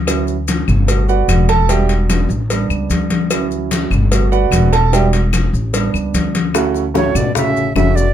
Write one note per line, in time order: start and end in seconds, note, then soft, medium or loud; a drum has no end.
0.00 0.62 D2 medium
0.07 0.34 F#3 medium
0.07 0.34 C#4 medium
0.07 0.35 E4 medium
0.07 cowbell loud
0.07 high conga soft
0.07 claves medium
0.07 maracas medium
0.28 high conga soft
0.28 maracas soft
0.48 cowbell medium
0.48 high conga medium
0.48 maracas medium
0.68 1.25 G1 loud
0.68 high conga soft
0.68 low conga medium
0.68 claves medium
0.68 maracas soft
0.88 1.65 A3 medium
0.88 1.65 B3 soft
0.88 1.08 F#4 medium
0.88 cowbell loud
0.88 high conga soft
0.88 maracas medium
1.09 1.47 F#4 medium
1.09 1.47 B4 medium
1.09 1.47 D5 medium
1.09 1.46 F#5 medium
1.09 high conga soft
1.09 maracas soft
1.28 2.24 E1 medium
1.28 cowbell medium
1.28 high conga medium
1.28 claves medium
1.28 maracas medium
1.49 1.69 A4 loud
1.49 1.69 A5 loud
1.49 cowbell medium
1.49 high conga medium
1.49 maracas soft
1.69 2.27 G3 medium
1.69 2.27 D4 medium
1.69 2.27 F#4 medium
1.69 1.89 G4 medium
1.69 1.89 D5 medium
1.69 1.89 E5 medium
1.69 1.89 G5 loud
1.69 cowbell loud
1.69 high conga soft
1.69 maracas medium
1.89 cowbell medium
1.89 high conga soft
1.89 maracas soft
2.10 cowbell medium
2.10 high conga medium
2.10 claves medium
2.10 maracas medium
2.29 2.67 A1 loud
2.29 high conga soft
2.29 maracas soft
2.50 3.27 G3 medium
2.50 3.27 B3 soft
2.50 3.28 D4 medium
2.50 cowbell loud
2.50 high conga soft
2.50 maracas medium
2.70 2.89 C#2 medium
2.70 high conga soft
2.70 claves medium
2.70 maracas soft
2.89 3.85 D2 medium
2.89 cowbell medium
2.89 high conga medium
2.89 maracas medium
3.10 cowbell medium
3.10 high conga medium
3.10 maracas soft
3.31 3.89 F#3 medium
3.31 3.89 C#4 medium
3.31 3.89 E4 medium
3.31 cowbell loud
3.31 high conga soft
3.31 claves medium
3.31 maracas medium
3.51 high conga soft
3.51 maracas soft
3.71 cowbell medium
3.71 high conga loud
3.71 maracas medium
3.90 4.48 G1 loud
3.90 high conga soft
3.90 low conga medium
3.90 claves medium
3.90 maracas soft
4.11 4.69 A3 medium
4.11 4.70 B3 soft
4.11 4.31 F#4 medium
4.11 cowbell loud
4.11 high conga soft
4.11 maracas medium
4.32 4.70 F#4 medium
4.32 4.70 B4 medium
4.32 4.70 D5 medium
4.32 4.70 F#5 loud
4.32 high conga soft
4.32 maracas soft
4.51 5.47 E1 medium
4.51 cowbell medium
4.51 high conga medium
4.51 claves medium
4.51 maracas medium
4.73 4.92 A4 medium
4.73 4.92 A5 loud
4.73 cowbell medium
4.73 maracas soft
4.92 5.19 G3 medium
4.92 5.20 D4 medium
4.92 5.20 F#4 medium
4.92 5.05 G4 medium
4.92 5.05 D5 medium
4.92 5.05 E5 medium
4.92 5.05 G5 loud
4.92 cowbell loud
4.92 high conga soft
4.92 maracas medium
5.13 cowbell medium
5.13 high conga soft
5.13 maracas soft
5.33 cowbell medium
5.33 high conga medium
5.33 claves medium
5.33 maracas medium
5.53 5.91 A1 medium
5.53 high conga soft
5.53 maracas soft
5.73 6.31 G3 medium
5.73 6.31 B3 medium
5.73 6.32 D4 medium
5.73 cowbell loud
5.73 high conga soft
5.73 maracas medium
5.94 6.13 C#2 medium
5.94 high conga soft
5.94 claves medium
5.94 maracas soft
6.14 7.09 D2 medium
6.14 cowbell medium
6.14 high conga medium
6.14 maracas medium
6.35 cowbell medium
6.35 high conga medium
6.35 maracas soft
6.54 6.83 A3 medium
6.54 6.83 C#4 medium
6.54 6.83 E4 medium
6.54 6.83 F#4 loud
6.54 high bongo medium
6.54 high conga soft
6.54 claves medium
6.54 maracas medium
6.74 high bongo soft
6.74 high conga soft
6.74 maracas soft
6.94 7.17 A2 medium
6.94 7.23 A3 medium
6.94 7.23 C#4 medium
6.94 7.23 E4 medium
6.94 7.23 F#4 loud
6.94 7.18 C#5 medium
6.94 high bongo medium
6.94 high conga medium
6.94 maracas soft
7.15 7.72 A1 medium
7.15 7.35 B2 medium
7.15 7.35 D5 medium
7.15 high bongo soft
7.15 high conga soft
7.15 low conga medium
7.15 claves medium
7.15 maracas medium
7.35 7.73 C#3 medium
7.35 7.64 A3 medium
7.35 7.64 C#4 medium
7.35 7.64 E4 medium
7.35 7.64 F#4 medium
7.35 7.74 E5 loud
7.35 high bongo medium
7.35 high conga soft
7.35 low conga medium
7.35 maracas medium
7.56 high conga soft
7.56 maracas soft
7.75 8.14 F1 medium
7.75 7.98 C#3 medium
7.75 8.05 A3 medium
7.75 8.05 C#4 medium
7.75 8.05 E4 medium
7.75 8.05 F#4 medium
7.75 7.97 E5 medium
7.75 high bongo soft
7.75 low bongo medium
7.75 high conga medium
7.75 claves medium
7.75 maracas soft
7.96 8.14 B2 medium
7.96 8.14 D5 loud
7.96 high bongo soft
7.96 high conga soft
7.96 maracas medium